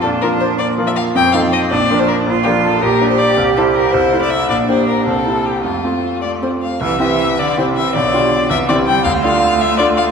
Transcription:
<<
  \new Staff \with { instrumentName = "Violin" } { \time 6/8 \key f \major \tempo 4. = 108 a'8 bes'8 c''8 d''8. e''16 f''8 | g''8 f''8 ees''8 d''8. c''16 bes'8 | r8 g'8 a'8 bes'8. c''16 d''8 | r8 a'8 bes'8 c''8. d''16 e''8 |
d''8 c''8 bes'8 a'4 g'8 | f'4. d''8 c''8 f''8 | \key c \major e''8 e''4 d''8 c''8 e''8 | d''4. e''8 d''8 g''8 |
f''8 f''4 e''8 d''8 f''8 | }
  \new Staff \with { instrumentName = "Grand piano" } { \time 6/8 \key f \major bes,8 <f f' bes'>4. <f f' bes'>4 | f,8 <f ees' a'>4 bes,,8 <f d' bes'>4 | bes,,8 <f d' bes'>4 bes,,8 <g d' d''>4 | c,8 <g e' c''>4 c,8 <a e' c''>4 |
bes,,8 <bes d' g'>4 c,8 <bes e' g'>4 | f,8 <a c' f'>4. <a c' f'>4 | \key c \major c,8 <c' e' g'>4. <c' e' g'>4 | b,,8 <d' f' g'>4 c,8 <c' e' g'>4 |
d,8 <a d' f'>4. <a d' f'>4 | }
  \new Staff \with { instrumentName = "Cello" } { \time 6/8 \key f \major d'4. bes4. | c'4. d'4. | f'4. g'4.~ | g'4. e'4. |
d'4. c'4. | a2~ a16 r8. | \key c \major e8 e4 d8 c8 e8 | d4. e8 d8 g8 |
a2. | }
>>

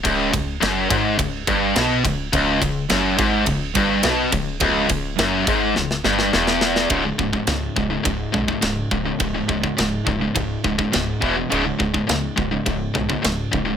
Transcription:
<<
  \new Staff \with { instrumentName = "Distorted electric guitar" } { \clef bass \time 4/4 \key cis \minor \tempo 4 = 105 cis,8 cis,8 fis,8 gis,8 cis,8 g,8 b,8 cis,8 | cis,8 cis,8 fis,8 gis,8 cis,8 g,8 b,8 cis,8 | cis,8 cis,8 fis,8 gis,8 cis,8 g,8 e,4 | <cis, gis, cis>16 <cis, gis,>16 <cis, gis,>16 <cis, gis,>16 <cis, gis,>8 <cis, gis,>16 <cis, gis,>16 <cis, gis,>8 <cis, gis,>16 <cis, gis,>16 <cis, gis,>8 <cis, gis,>16 <cis, gis,>16 |
<cis, gis,>16 <cis, gis,>16 <cis, gis,>16 <cis, gis,>16 <cis, gis,>8 <cis, gis,>16 <cis, gis,>16 <cis, gis,>8 <cis, gis,>16 <cis, gis,>16 <cis, gis,>8 <e, b, e>16 <e, b,>16 | <cis, gis, cis>16 <cis, gis,>16 <cis, gis,>16 <cis, gis,>16 <cis, gis,>8 <cis, gis,>16 <cis, gis,>16 <cis, gis,>8 <cis, gis,>16 <cis, gis,>16 <cis, gis,>8 <cis, gis,>16 <cis, gis,>16 | }
  \new Staff \with { instrumentName = "Distorted electric guitar" } { \clef bass \time 4/4 \key cis \minor cis,8 cis,8 fis,8 gis,8 cis,8 g,8 b,8 cis,8 | cis,8 cis,8 fis,8 gis,8 cis,8 g,8 b,8 cis,8 | cis,8 cis,8 fis,8 gis,8 cis,8 g,8 e,4 | <cis, gis, cis>16 <cis, gis,>16 <cis, gis,>16 <cis, gis,>16 <cis, gis,>8 <cis, gis,>16 <cis, gis,>16 <cis, gis,>8 <cis, gis,>16 <cis, gis,>16 <cis, gis,>8 <cis, gis,>16 <cis, gis,>16 |
<cis, gis,>16 <cis, gis,>16 <cis, gis,>16 <cis, gis,>16 <cis, gis,>8 <cis, gis,>16 <cis, gis,>16 <cis, gis,>8 <cis, gis,>16 <cis, gis,>16 <cis, gis,>8 <e, b, e>16 <e, b,>16 | <cis, gis, cis>16 <cis, gis,>16 <cis, gis,>16 <cis, gis,>16 <cis, gis,>8 <cis, gis,>16 <cis, gis,>16 <cis, gis,>8 <cis, gis,>16 <cis, gis,>16 <cis, gis,>8 <cis, gis,>16 <cis, gis,>16 | }
  \new Staff \with { instrumentName = "Analog synth bass" } { \clef bass \time 4/4 \key cis \minor cis,,8 cis,,8 fis,,8 gis,,8 cis,,8 g,,8 b,,8 cis,,8 | cis,,8 cis,,8 fis,,8 gis,,8 cis,,8 g,,8 b,,8 cis,,8 | cis,,8 cis,,8 fis,,8 gis,,8 cis,,8 g,,8 e,,4 | cis,,8 cis,,8 cis,8 cis,,8 cis,,8 b,,8 cis,,8 cis,,8 |
cis,,8 cis,,8 cis,,8 cis,,8 cis,,8 cis,,8 cis,,8 e,,8 | cis,,8 cis,,8 cis,8 cis,,8 cis,,8 b,,8 cis,,8 cis,,8 | }
  \new DrumStaff \with { instrumentName = "Drums" } \drummode { \time 4/4 <bd cymr>8 <bd cymr>8 <cymr sn>8 <bd cymr>8 <bd cymr>8 <bd cymr>8 <cymr sn>8 <bd cymr>8 | <bd cymr>8 <bd cymr>8 <cymr sn>8 <bd cymr>8 <bd cymr>8 <bd cymr>8 <cymr sn>8 <bd cymr>8 | <bd cymr>8 <bd cymr>8 <cymr sn>8 <bd cymr>8 sn16 sn16 sn16 sn16 sn16 sn16 sn16 sn16 | <bd rb>8 bd16 bd16 <rb sn>8 bd8 <bd rb>8 bd16 bd16 <rb sn>8 bd8 |
<bd rb>8 bd16 bd16 <rb sn>8 bd8 <bd rb>8 bd16 bd16 <rb sn>8 bd8 | rb8 bd16 bd16 <rb sn>8 bd8 <bd rb>8 bd16 bd16 <rb sn>8 bd8 | }
>>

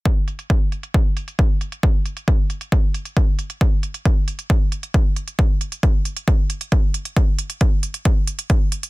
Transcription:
\new DrumStaff \with { instrumentName = "Drums" } \drummode { \time 4/4 \tempo 4 = 135 <hh bd>8 hh16 hh16 <hh bd>8 hh16 hh16 <hh bd>8 hh16 hh16 <hh bd>8 hh16 hh16 | <hh bd>8 hh16 hh16 <hh bd>8 hh16 hh16 <hh bd>8 hh16 hh16 <hh bd>8 hh16 hh16 | <hh bd>8 hh16 hh16 <hh bd>8 hh16 hh16 <hh bd>8 hh16 hh16 <hh bd>8 hh16 hh16 | <hh bd>8 hh16 hh16 <hh bd>8 hh16 hh16 <hh bd>8 hh16 hh16 <hh bd>8 hh16 hh16 |
<hh bd>8 hh16 hh16 <hh bd>8 hh16 hh16 <hh bd>8 hh16 hh16 <hh bd>8 hh16 hh16 | }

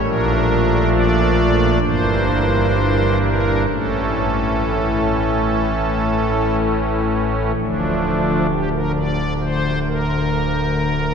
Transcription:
<<
  \new Staff \with { instrumentName = "Pipe organ" } { \time 4/4 \key d \minor \tempo 4 = 65 bes'4 d''4 c''4. bes'8 | a'2. r4 | <f a d'>4 g'16 bes'16 d''8 c''8 bes'4. | }
  \new Staff \with { instrumentName = "Pipe organ" } { \clef bass \time 4/4 \key d \minor <bes,, bes, f a d'>2 <g,, g, e bes d'>2 | <a,, a, e a cis'>1 | <d,, d,>1 | }
>>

